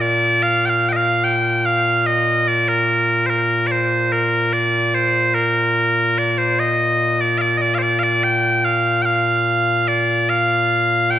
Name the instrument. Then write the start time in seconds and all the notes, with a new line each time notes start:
bagpipes
Already playing: A#2
0.01 D5
0.43 F5
0.65 F5 G5
0.89 D#5 G5
0.96 F5
1.24 G5
1.65 F5
2.06 D#5
2.48 D5
2.69 A#4
3.27 A#4 C5
3.67 D5
3.71 C5
4.12 A#4
4.53 D5
4.94 C5
5.35 A#4
6.18 D5
6.38 C5
6.59 D#5
7.21 D5
7.38 D5 F5
7.57 D5 D#5
7.75 C5 F5
7.82 D5
7.99 F5
8.03 D5
8.23 G5
8.65 F5
9.02 F5 G5
9.88 D5
10.29 F5
11.10 G5